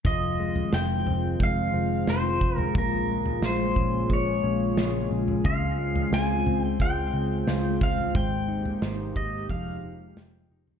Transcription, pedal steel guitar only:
0.06 0.74 D#5 medium
0.74 1.43 G5 medium
1.43 2.11 F5 medium
2.10 2.57 C5 medium
2.57 2.72 A#4 medium
2.78 3.46 A#4 medium
3.45 4.13 C5 medium
4.13 5.09 C#5 medium
5.46 6.15 F5 medium
6.14 6.62 G#5 medium
6.62 6.81 G5 medium
6.82 7.83 G5 medium
7.83 8.16 F5 medium
8.16 8.79 G5 medium
9.17 9.50 D#5 medium
9.50 10.13 F5 loud

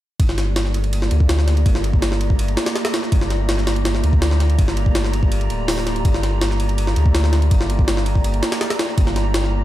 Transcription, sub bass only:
0.20 1.10 G1 loud
1.11 1.65 D2 medium
1.66 2.56 G1 loud
3.12 4.02 G1 medium
4.04 4.57 D2 medium
4.59 5.49 G1 loud
5.50 6.04 D1 medium
6.05 6.95 G1 loud
6.96 7.50 D2 medium
7.51 8.41 G1 loud
8.98 9.64 G1 loud

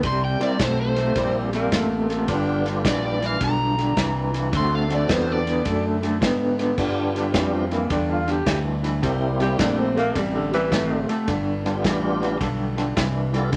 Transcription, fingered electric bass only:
0.04 0.38 C2 medium
0.40 muted fingered electric bass stroke soft
0.59 1.14 B1 loud
1.15 1.70 A#1 medium
1.72 2.27 A1 medium
2.28 2.83 G1 medium
2.84 3.39 A#1 loud
3.41 3.95 B1 medium
3.97 4.51 C2 medium
4.53 5.07 D2 medium
5.09 5.64 E2 loud
5.66 6.20 F#2 medium
6.22 6.76 G#2 medium
6.78 7.33 G2 medium
7.34 7.89 F2 medium
7.90 8.45 E2 medium
8.46 9.01 D2 medium
9.03 9.58 C2 medium
9.59 10.14 A#1 loud
10.16 10.70 A1 medium
10.72 11.07 G#1 loud
11.28 11.83 G1 medium
11.84 12.39 A1 loud
12.41 12.95 B1 medium
12.97 13.51 C2 medium
13.53 13.56 D2 medium

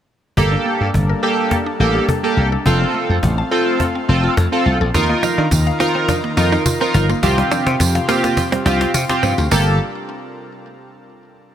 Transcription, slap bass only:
0.37 0.55 G1 loud
0.81 0.89 G2 medium
0.94 1.12 G1 medium
1.80 1.98 A1 medium
2.37 2.55 C2 medium
2.66 2.84 F1 loud
3.10 3.18 F2 medium
3.23 3.41 A1 medium
4.09 4.27 F1 medium
4.37 4.47 F2 loud
4.66 4.75 C2 medium
4.81 4.89 A#1 medium
4.95 5.12 D#2 loud
5.38 5.47 D#3 medium
5.52 5.70 D#2 medium
6.37 6.55 F2 loud
6.94 7.12 G1 medium
7.23 7.41 C2 loud
7.67 7.75 C3 loud
7.80 7.98 F2 loud
8.66 8.84 C2 medium
8.94 9.04 C3 loud
9.23 9.33 G2 loud
9.38 9.47 D2 loud
9.52 9.78 G1 loud

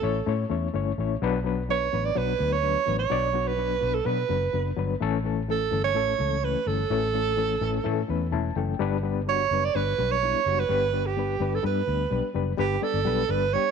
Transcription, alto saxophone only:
0.00 0.52 A4 medium
1.71 2.07 C#5 loud
2.05 2.19 D5 medium
2.18 2.54 B4 medium
2.53 2.98 C#5 loud
2.99 3.49 C#5 medium
3.48 3.96 B4 medium
3.95 4.08 A4 medium
4.07 4.77 B4 medium
5.51 5.83 A4 medium
5.84 6.46 C#5 loud
6.45 6.69 B4 medium
6.67 8.09 A4 medium
9.29 9.66 C#5 medium
9.65 9.77 D5 medium
9.75 10.13 B4 medium
10.11 10.61 C#5 loud
10.60 11.08 B4 medium
11.07 11.56 G4 medium
11.55 11.65 A4 medium
11.66 12.32 B4 medium
12.60 12.85 G4 medium
12.83 13.32 A4 medium
13.31 13.55 B4 medium
13.54 13.71 C#5 loud

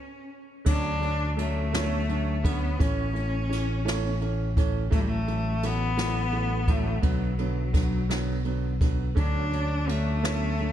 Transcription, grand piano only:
0.65 0.92 D3 medium
0.65 0.92 F#3 medium
0.65 0.92 C#4 loud
1.00 1.27 D3 medium
1.00 1.27 F#3 medium
1.00 1.28 C#4 medium
1.36 1.63 D3 medium
1.36 1.63 F#3 medium
1.36 1.63 C#4 medium
1.72 1.99 D3 medium
1.72 1.99 F#3 medium
1.72 1.99 C#4 medium
2.08 2.35 D3 medium
2.08 2.35 F#3 medium
2.08 2.35 C#4 medium
2.44 2.70 D3 medium
2.44 2.70 F#3 medium
2.44 2.70 C#4 medium
2.79 3.05 E3 medium
2.79 3.06 A3 medium
2.79 3.06 C#4 loud
3.13 3.40 E3 medium
3.13 3.40 A3 medium
3.13 3.41 C#4 medium
3.49 3.76 E3 medium
3.49 3.76 A3 medium
3.49 3.76 C#4 medium
3.85 4.11 E3 medium
3.85 4.12 A3 medium
3.85 4.12 C#4 loud
4.20 4.47 E3 medium
4.20 4.47 A3 medium
4.20 4.47 C#4 medium
4.56 4.82 E3 medium
4.56 4.83 A3 medium
4.56 4.83 C#4 medium
4.90 5.17 E3 medium
4.90 5.17 F#3 medium
4.90 5.17 A3 loud
5.27 5.53 E3 medium
5.27 5.53 F#3 medium
5.27 5.53 A3 medium
5.63 5.89 E3 medium
5.63 5.88 F#3 medium
5.63 5.89 A3 medium
5.97 6.23 E3 loud
5.97 6.23 F#3 medium
5.97 6.23 A3 loud
6.32 6.58 E3 medium
6.32 6.58 F#3 medium
6.32 6.58 A3 medium
6.68 6.94 E3 medium
6.68 6.94 F#3 medium
6.68 6.94 A3 medium
7.02 7.28 D3 medium
7.02 7.29 F#3 medium
7.02 7.29 B3 loud
7.38 7.65 D3 medium
7.38 7.65 F#3 medium
7.38 7.65 B3 medium
7.73 8.00 D3 medium
7.73 8.00 F#3 medium
7.73 8.00 B3 medium
8.09 8.36 D3 medium
8.09 8.36 F#3 medium
8.09 8.36 B3 loud
8.45 8.71 D3 medium
8.45 8.71 F#3 medium
8.45 8.72 B3 medium
8.81 9.07 D3 medium
8.81 9.07 F#3 medium
8.81 9.07 B3 medium
9.15 9.42 D3 medium
9.15 9.43 F#3 medium
9.15 9.43 C#4 medium
9.51 9.78 D3 medium
9.51 9.78 F#3 medium
9.51 9.79 C#4 medium
9.87 10.14 D3 medium
9.87 10.14 F#3 medium
9.87 10.14 C#4 medium
10.23 10.49 D3 medium
10.23 10.50 F#3 medium
10.23 10.50 C#4 medium
10.60 10.72 D3 medium
10.60 10.72 F#3 medium
10.60 10.72 C#4 medium

